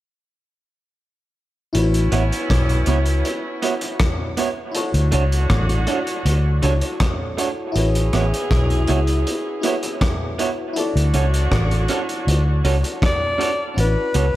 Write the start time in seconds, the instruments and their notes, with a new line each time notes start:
1.73 fingered electric bass A1, saxophone section B3 C#4 E4, fm electric piano E4 F#4, closed hi-hat
1.77 fm electric piano B4 C#5
1.94 closed hi-hat
2.12 fingered electric bass A1, clean electric guitar B3 E4 F#4 C#5, closed hi-hat
2.32 closed hi-hat
2.50 fingered electric bass B1, kick, cross-stick, closed hi-hat
2.69 closed hi-hat
2.86 fingered electric bass C#2, clean electric guitar B3 E4 F#4 C#5, closed hi-hat
3.06 closed hi-hat
3.25 closed hi-hat
3.62 clean electric guitar B3 E4 F#4 C#5, closed hi-hat
3.81 muted clean electric guitar stroke, closed hi-hat
4.00 kick, cross-stick, closed hi-hat
4.37 clean electric guitar B3 E4 F#4 C#5, closed hi-hat
4.71 fm electric piano E4 F4 A4, closed hi-hat
4.76 saxophone section F#3 D4 F#4, fm electric piano C#5
4.80 fm electric piano F#4
4.94 fingered electric bass D2, closed hi-hat
5.12 fingered electric bass C#2, clean electric guitar A3 D4 F#4 C#5, closed hi-hat
5.32 closed hi-hat
5.50 fingered electric bass A1, kick, cross-stick, closed hi-hat
5.69 closed hi-hat
5.87 clean electric guitar A3 D4 F#4 C#5, closed hi-hat
6.07 closed hi-hat
6.25 fingered electric bass D2, closed hi-hat
6.62 fingered electric bass C#2, clean electric guitar A3 D4 F#4 C#5, fm electric piano E4 F#4 A4 C#5, closed hi-hat
6.81 muted clean electric guitar stroke, closed hi-hat
7.00 kick, cross-stick, closed hi-hat
7.37 clean electric guitar A3 D4 F#4 C#5, closed hi-hat
7.72 fingered electric bass A1, saxophone section C#4 E4 G#4, fm electric piano E4 F#4, closed hi-hat
7.76 fm electric piano B4 C#5
7.95 closed hi-hat
8.13 fingered electric bass A1, clean electric guitar B3 E4 F#4 C#5, cross-stick, closed hi-hat
8.34 closed hi-hat
8.51 fingered electric bass B1, kick, cross-stick, closed hi-hat
8.70 closed hi-hat
8.87 fingered electric bass C#2, clean electric guitar B3 E4 F#4 C#5, closed hi-hat
9.07 closed hi-hat
9.27 closed hi-hat
9.61 clean electric guitar B3 E4 F#4, fm electric piano E4 F#4 B4 E5, closed hi-hat
9.66 clean electric guitar C#5
9.83 muted clean electric guitar stroke, closed hi-hat
10.01 kick, cross-stick, closed hi-hat
10.39 clean electric guitar B3 E4 F#4 C#5, closed hi-hat
10.73 saxophone section F#3 D4 F#4, fm electric piano E4 F#4, closed hi-hat
10.77 fm electric piano A4 D5
10.96 fingered electric bass D2, closed hi-hat
11.14 fingered electric bass C#2, clean electric guitar C#4 F#4 A4 C#5, closed hi-hat
11.34 closed hi-hat
11.52 fingered electric bass A1, kick, cross-stick, closed hi-hat
11.71 closed hi-hat
11.88 clean electric guitar C#4 F#4 A4 C#5, closed hi-hat
12.09 closed hi-hat
12.27 fingered electric bass D2, closed hi-hat
12.64 fingered electric bass C#2, clean electric guitar C#4 F#4 A4 C#5, closed hi-hat
12.83 muted clean electric guitar stroke, closed hi-hat
13.02 alto saxophone D5, kick, cross-stick, closed hi-hat
13.38 clean electric guitar C#4 F#4 A4 C#5, closed hi-hat
13.74 fingered electric bass A1, fm electric piano C#4 E4 F#4, closed hi-hat
13.80 fm electric piano B4, alto saxophone B4
14.14 fingered electric bass C#2, clean electric guitar B3 F#4 A4 C#5, closed hi-hat